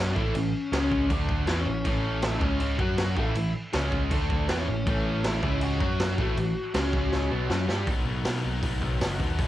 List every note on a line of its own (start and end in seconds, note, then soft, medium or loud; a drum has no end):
0.00 0.13 F#2 loud
0.00 0.16 F#3 loud
0.00 0.11 C#4 medium
0.00 0.16 C#4 loud
0.00 0.16 F#4 loud
0.00 0.10 C#5 medium
0.11 0.15 D5 medium
0.15 0.34 A1 medium
0.15 0.34 A2 medium
0.15 0.34 E3 loud
0.15 0.35 A3 loud
0.15 0.34 E4 medium
0.15 0.34 E5 medium
0.15 kick medium
0.34 0.52 A1 medium
0.34 0.50 A2 medium
0.34 0.50 E3 medium
0.34 1.06 C#4 medium
0.34 1.10 C#5 medium
0.34 crash medium
0.72 1.07 C#2 medium
0.72 1.09 C#3 medium
0.72 1.10 G#3 loud
0.72 1.10 C#4 loud
0.72 snare loud
0.72 crash medium
0.92 kick medium
1.10 1.45 D2 medium
1.10 1.46 D3 loud
1.10 1.47 A3 medium
1.10 1.47 D4 loud
1.10 kick loud
1.10 crash medium
1.29 kick medium
1.47 1.65 E2 loud
1.47 1.65 E3 medium
1.47 1.66 B3 loud
1.47 1.57 B3 medium
1.47 1.66 E4 loud
1.47 1.59 B4 medium
1.47 snare loud
1.47 crash medium
1.58 1.84 C#4 medium
1.58 1.86 C#5 medium
1.66 1.84 A1 medium
1.66 1.81 A2 medium
1.66 1.82 E3 medium
1.85 2.38 A1 medium
1.85 2.41 A2 medium
1.85 2.41 E3 loud
1.85 2.41 A3 loud
1.85 2.21 C#4 medium
1.85 2.25 C#5 medium
1.85 kick loud
1.85 crash medium
2.22 2.32 E4 medium
2.22 2.33 E5 loud
2.22 snare loud
2.22 crash medium
2.34 2.59 C#4 medium
2.34 2.59 C#5 medium
2.41 2.76 C#2 medium
2.41 2.78 C#3 medium
2.41 2.79 G#3 medium
2.41 2.78 C#4 loud
2.41 kick loud
2.60 2.78 C#4 medium
2.60 2.79 C#5 loud
2.60 crash medium
2.79 3.14 F#2 loud
2.79 3.16 F#3 loud
2.79 3.16 C#4 loud
2.79 3.16 F#4 loud
2.79 2.97 F#4 medium
2.79 2.97 F#5 medium
2.79 kick medium
2.98 3.16 F#4 medium
2.98 3.17 F#5 medium
2.98 snare loud
2.98 crash medium
3.16 3.34 A1 medium
3.16 3.34 A2 loud
3.16 3.35 E3 loud
3.16 3.35 A3 loud
3.16 3.52 E4 medium
3.16 3.52 E5 medium
3.16 kick medium
3.35 3.53 A1 medium
3.35 3.51 A2 medium
3.35 3.51 E3 medium
3.35 crash medium
3.73 4.09 C#2 loud
3.73 4.10 C#3 loud
3.73 4.11 G#3 loud
3.73 4.11 C#4 loud
3.73 snare loud
3.73 crash medium
3.92 kick medium
4.11 4.46 D2 medium
4.11 4.48 D3 loud
4.11 4.48 A3 loud
4.11 4.49 D4 loud
4.11 kick loud
4.11 crash medium
4.30 kick medium
4.48 4.67 E2 loud
4.48 4.67 E3 loud
4.48 4.67 B3 loud
4.48 4.58 B3 medium
4.48 4.67 E4 loud
4.48 4.58 B4 medium
4.48 snare loud
4.48 crash medium
4.58 4.85 C#4 medium
4.58 4.87 C#5 loud
4.68 4.85 A1 medium
4.68 4.82 A2 medium
4.68 4.83 E3 medium
4.86 5.39 A1 loud
4.86 5.43 A2 medium
4.86 5.43 E3 medium
4.86 5.44 A3 loud
4.86 5.23 C#4 medium
4.86 5.26 C#5 loud
4.86 kick loud
4.86 crash medium
5.24 5.60 E4 medium
5.24 5.63 E5 loud
5.24 snare loud
5.24 crash medium
5.43 5.78 C#2 loud
5.43 5.80 C#3 medium
5.43 5.80 G#3 medium
5.43 5.80 C#4 loud
5.43 kick loud
5.61 7.47 F#4 medium
5.61 7.47 F#5 loud
5.61 crash medium
5.80 6.15 F#2 loud
5.80 6.17 F#3 loud
5.80 6.18 C#4 loud
5.80 6.18 F#4 loud
5.80 kick medium
6.00 snare loud
6.00 crash medium
6.18 6.35 A1 medium
6.18 6.36 A2 loud
6.18 6.36 E3 medium
6.18 6.37 A3 medium
6.18 kick loud
6.37 6.54 A1 medium
6.37 6.52 A2 medium
6.37 6.52 E3 medium
6.37 crash medium
6.74 6.92 C#2 loud
6.74 6.92 C#3 loud
6.74 6.93 G#3 loud
6.74 6.93 C#4 loud
6.74 snare loud
6.74 crash medium
6.93 7.28 C#2 medium
6.93 7.30 C#3 medium
6.93 7.31 G#3 loud
6.93 7.31 C#4 loud
6.93 kick loud
7.12 snare medium
7.31 7.49 B1 medium
7.31 7.49 B2 loud
7.31 7.48 F#3 loud
7.31 7.50 B3 loud
7.49 7.67 F#2 loud
7.49 7.68 F#3 medium
7.49 7.68 C#4 loud
7.49 7.68 F#4 loud
7.49 snare loud
7.68 7.86 G2 medium
7.68 7.87 G3 medium
7.68 7.87 D4 loud
7.68 7.87 G4 loud
7.68 snare medium
7.86 8.05 B1 medium
7.86 8.04 B2 medium
7.86 8.05 D#3 medium
7.86 8.05 F#3 medium
7.86 8.06 B3 medium
7.86 8.06 D#4 loud
7.86 kick loud
7.86 open hi-hat soft
8.05 8.24 B1 medium
8.05 8.23 B2 medium
8.05 8.23 D#3 medium
8.05 8.24 F#3 medium
8.05 8.25 B3 medium
8.05 8.25 D#4 medium
8.24 8.42 B2 medium
8.24 8.43 B2 medium
8.24 8.43 D#3 medium
8.24 8.44 F#3 loud
8.24 8.44 B3 medium
8.24 8.44 D#4 medium
8.24 snare loud
8.24 open hi-hat medium
8.43 8.62 B1 medium
8.43 8.61 B2 medium
8.43 8.62 D#3 medium
8.43 8.62 F#3 medium
8.43 8.63 B3 medium
8.43 8.63 D#4 medium
8.62 8.81 B1 medium
8.62 8.80 B2 medium
8.62 8.81 D#3 loud
8.62 8.81 F#3 loud
8.62 8.82 B3 loud
8.62 8.83 D#4 loud
8.62 kick loud
8.62 open hi-hat medium
8.81 9.00 B1 medium
8.81 8.99 B2 medium
8.81 9.00 D#3 medium
8.81 9.01 F#3 medium
8.81 9.01 B3 loud
8.81 9.02 D#4 medium
8.81 kick medium
9.00 9.19 F#1 medium
9.00 9.19 B2 medium
9.00 9.20 D#3 medium
9.00 9.20 F#3 loud
9.00 9.21 B3 medium
9.00 9.21 D#4 medium
9.00 snare loud
9.00 open hi-hat medium
9.19 9.38 D#2 medium
9.19 9.38 B2 medium
9.19 9.38 D#3 medium
9.19 9.38 F#3 medium
9.19 9.39 B3 medium
9.19 9.39 D#4 medium
9.19 kick medium
9.38 9.48 E1 loud
9.38 9.48 E2 loud
9.38 9.48 B2 loud
9.38 9.48 E3 loud
9.38 9.48 G#3 medium
9.38 9.48 B3 medium
9.38 9.48 E4 medium
9.38 kick loud
9.38 open hi-hat soft